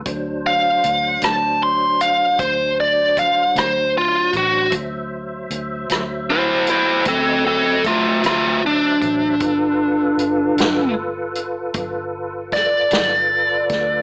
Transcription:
<<
  \new Staff \with { instrumentName = "Lead electric guitar" } { \time 12/8 \key d \mixolydian \tempo 4. = 51 r8 f''4 a''8 c'''8 f''8 c''8 d''8 f''8 c''8 f'8 fis'8 | r2 <e' c''>8 <e' c''>8 <c' a'>8 <c' a'>8 <a f'>8 <a f'>8 d'4~ | d'2 r2 d''2 | }
  \new Staff \with { instrumentName = "Tonewheel organ" } { \time 12/8 \key d \mixolydian <fis d' c''>1. | <fis c'' e''>1. | <f' a' b'>1. | }
  \new Staff \with { instrumentName = "Fingered electric bass" } { \clef bass \time 12/8 \key d \mixolydian d,4 d,8 d,4. d,4. d,4 a,,8 | d,4 d,8 d,4. d,4. d,4 a,,8 | g,,4 g,,8 g,,4. g,,4. g,,4 d,8 | }
  \new DrumStaff \with { instrumentName = "Drums" } \drummode { \time 12/8 <hh bd>4 hh8 <hh ss>4 hh8 <hh bd>4 <hh bd>8 <hh ss>4 <hh bd>8 | <hh bd>4 hh8 <hh ss>4 hh8 <hh bd>4 <hh bd>8 <hh ss>4 <hh bd>8 | <hh bd>4 hh8 <hh sn>4 hh8 <hh bd>4 <hh bd sn>8 <hh sn>4 <hh bd sn>8 | }
>>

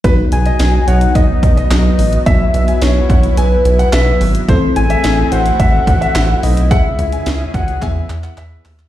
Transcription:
<<
  \new Staff \with { instrumentName = "Grand piano" } { \time 4/4 \key e \major \tempo 4 = 108 b'16 r8 dis''8 r16 cis''16 r16 dis''16 r8 dis''8 r8. | e''16 r8 gis''8 r16 fis''16 r16 gis''16 r8 fis''16 e''8. r16 | c''16 r8 e''8 r16 c''16 r16 e''16 r8 e''8 r8. | fis''16 r8 gis''8 r16 fis''16 r16 gis''16 r8 fis''16 e''8. r16 | }
  \new Staff \with { instrumentName = "Soft synth lead" } { \time 4/4 \key e \major r8 gis''4 fis''8 dis''4 dis''4 | e''4 cis''4 b'4. r8 | r8 gis''4 fis''2 dis''8 | e''4. fis''8 e''4. r8 | }
  \new Staff \with { instrumentName = "FM electric piano" } { \time 4/4 \key e \major <b dis' fis'>1 | <b e' fis'>1 | <c' e' a'>1 | <cis' e' gis'>2 <b e' gis'>2 | }
  \new Staff \with { instrumentName = "Analog synth pad" } { \time 4/4 \key e \major << { dis'1 | e'1 | e'1 | <cis gis'>2 <e b'>2 | } \\ { <fis b>1~ | <fis b>1 | <a c'>1 | cis'2 r2 | } >> }
  \new Staff \with { instrumentName = "Analog synth bass" } { \clef bass \time 4/4 \key e \major b,,8 b,,8 b,,8 b,,8 b,,8 b,,8 b,,8 a,,8 | b,,8 b,,8 b,,8 b,,8 b,,8 b,,8 b,,8 gis,,8 | a,,8 a,,8 a,,8 a,,8 a,,8 a,,8 a,,8 b,,8 | cis,8 cis,8 cis,8 cis,8 e,8 e,8 e,8 dis,8 | }
  \new DrumStaff \with { instrumentName = "Drums" } \drummode { \time 4/4 <hh bd>8 hh16 hh16 <hh sn>8 hh16 hh16 <hh bd>8 <hh bd>16 hh16 <hc hh sn>8 hho16 hh16 | <hh bd>8 hh16 hh16 <hh sn>8 <hh bd>16 hh16 hh8 hh16 hh16 <hc hh sn>8 hho16 hh16 | <hh bd>8 hh16 hh16 <hh sn>8 hh16 hh16 <hh bd>8 <hh bd>16 hh16 <hc hh sn>8 hho16 hh16 | <hh bd>8 hh16 hh16 <hh sn>8 <hh bd>16 hh16 <hc hh bd>8 <hc hh>16 <hc hh>16 <hc hh>8 <hc hho>16 <hc hh>16 | }
>>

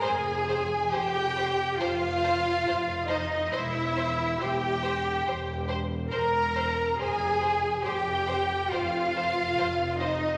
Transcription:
<<
  \new Staff \with { instrumentName = "Violin section" } { \time 4/4 \key f \minor \tempo 4 = 69 aes''4 g''4 f''4. ees''8 | e''4 g''4. r8 bes''4 | aes''4 g''4 f''4. ees''8 | }
  \new Staff \with { instrumentName = "Violin section" } { \time 4/4 \key f \minor c''8 c''8 c''8 c''8 c''8 c''8 c''8 c''8 | c''8 c''8 c''8 c''8 c''8 c''8 c''8 c''8 | c''8 c''8 c''8 c''8 c''8 c''8 c''8 c''8 | }
  \new Staff \with { instrumentName = "Cello section" } { \time 4/4 \key f \minor aes'4 g'4 f'4. ees'8 | e'4 g'4. r8 bes'4 | aes'4 g'4 f'4. ees'8 | }
  \new Staff \with { instrumentName = "Viola section" } { \time 4/4 \key f \minor aes'4 g'4 f'4. ees'8 | e'4 g'4. r8 bes'4 | aes'4 g'4 f'4. ees'8 | }
  \new Staff \with { instrumentName = "Double bass section" } { \clef bass \time 4/4 \key f \minor f,,4 f,,4 f,,4 f,,4 | e,,4 e,,4 e,,4 e,,4 | f,,4 f,,4 f,,4 f,,4 | }
>>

